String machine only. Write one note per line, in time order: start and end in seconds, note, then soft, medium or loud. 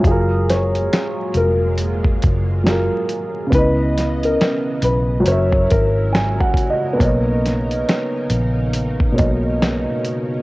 0.04 3.48 F#3 medium
0.04 3.48 G#3 medium
0.04 3.48 A#3 medium
0.04 3.48 F4 medium
3.52 10.42 C#3 medium
3.52 5.24 E3 medium
3.52 5.24 B3 medium
3.52 5.24 D#5 medium
5.25 6.98 F#3 medium
5.25 6.98 E4 medium
5.25 10.42 A#4 medium
7.00 10.42 C#4 medium
7.00 10.42 D#4 medium